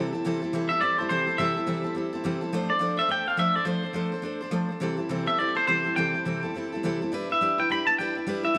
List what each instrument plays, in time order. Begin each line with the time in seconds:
Already playing: steel-string acoustic guitar C3 E3 G3 C4 E4 A4
0.13 steel-string acoustic guitar G3 C4 E4 A4
0.25 steel-string acoustic guitar C3 E3 G3 C4 E4 A4
0.42 steel-string acoustic guitar G3 C4 E4 A4
0.53 steel-string acoustic guitar C3 E3 G3 C4 E4 A4
0.69 steel-string acoustic guitar C4 E4 A4, clean electric guitar E5
0.74 steel-string acoustic guitar G3
0.81 steel-string acoustic guitar G3 C4 E4 A4, clean electric guitar D5
0.98 steel-string acoustic guitar G3 C4 E4 A4, clean electric guitar C5
1.09 steel-string acoustic guitar C3 E3 G3 C4 E4 A4, clean electric guitar C5
1.27 steel-string acoustic guitar G3 C4 E4 A4
1.38 steel-string acoustic guitar C3 E3 G3 C4 E4 A4, clean electric guitar E5
1.56 steel-string acoustic guitar G3 C4 E4 A4
1.66 steel-string acoustic guitar C3 E3 G3 C4 E4 A4
1.84 steel-string acoustic guitar G3 C4 E4 A4
1.95 steel-string acoustic guitar G3 C4 E4 A4
2.13 steel-string acoustic guitar G3 C4 E4 A4
2.24 steel-string acoustic guitar C3 E3 G3 C4 E4 A4
2.41 steel-string acoustic guitar G3 C4 E4 A4
2.52 steel-string acoustic guitar F3 A3 D4 A4 C5
2.69 steel-string acoustic guitar D4 A4 C5, clean electric guitar D5
2.79 steel-string acoustic guitar F3 A3 D4 A4 C5
2.97 steel-string acoustic guitar D4 A4 C5, clean electric guitar E5
3.08 steel-string acoustic guitar A3 D4 A4 C5, clean electric guitar G5
3.26 steel-string acoustic guitar D4 A4 C5, clean electric guitar F5
3.37 steel-string acoustic guitar F3 A3 D4 A4 C5, clean electric guitar E5
3.54 steel-string acoustic guitar D4 A4 C5, clean electric guitar D5
3.65 steel-string acoustic guitar F3 A3 D4 A4 C5, clean electric guitar C5
3.83 steel-string acoustic guitar D4 A4 C5
3.93 steel-string acoustic guitar F3 A3 D4 A4 C5
4.12 steel-string acoustic guitar D4 A4 C5
4.22 steel-string acoustic guitar A3 D4 A4 C5
4.41 steel-string acoustic guitar D4 A4 C5
4.51 steel-string acoustic guitar F3 A3 D4 A4 C5
4.69 steel-string acoustic guitar D4 A4 C5
4.80 steel-string acoustic guitar C3 E3 G3 C4 E4 A4
4.97 steel-string acoustic guitar G3 C4 E4 A4
5.09 steel-string acoustic guitar C3 E3 G3 C4 E4 A4
5.26 steel-string acoustic guitar G3 C4 E4 A4, clean electric guitar E5
5.38 steel-string acoustic guitar G3 C4 E4 A4, clean electric guitar D5
5.55 steel-string acoustic guitar G3 C4 E4 A4, clean electric guitar C5
5.67 steel-string acoustic guitar C3 E3 G3 C4 E4 A4, clean electric guitar C5
5.84 steel-string acoustic guitar G3 C4 E4 A4
5.96 steel-string acoustic guitar C3 E3 G3 C4 E4 A4, clean electric guitar G5
6.14 steel-string acoustic guitar G3 C4 E4 A4
6.25 steel-string acoustic guitar C3 E3 G3 C4 E4 A4
6.43 steel-string acoustic guitar G3 C4 E4 A4
6.55 steel-string acoustic guitar G3 C4 E4 A4
6.72 steel-string acoustic guitar G3 C4 E4 A4
6.83 steel-string acoustic guitar C3 E3 G3 C4 E4 A4
7.01 steel-string acoustic guitar G3 C4 E4 A4
7.12 steel-string acoustic guitar G3 D4 E4 B4
7.29 steel-string acoustic guitar D4 E4 B4, clean electric guitar E5
7.41 steel-string acoustic guitar G3 D4 E4 B4
7.58 steel-string acoustic guitar D4 E4 B4, clean electric guitar G5
7.70 steel-string acoustic guitar G3 D4 E4 B4, clean electric guitar B5
7.87 steel-string acoustic guitar D4 E4 B4, clean electric guitar A5
7.99 steel-string acoustic guitar G3 D4 E4 B4, clean electric guitar G5
8.15 steel-string acoustic guitar D4 E4 B4
8.27 steel-string acoustic guitar G3 D4 E4 B4
8.43 steel-string acoustic guitar D4 E4 B4, clean electric guitar E5
8.54 steel-string acoustic guitar G3 D4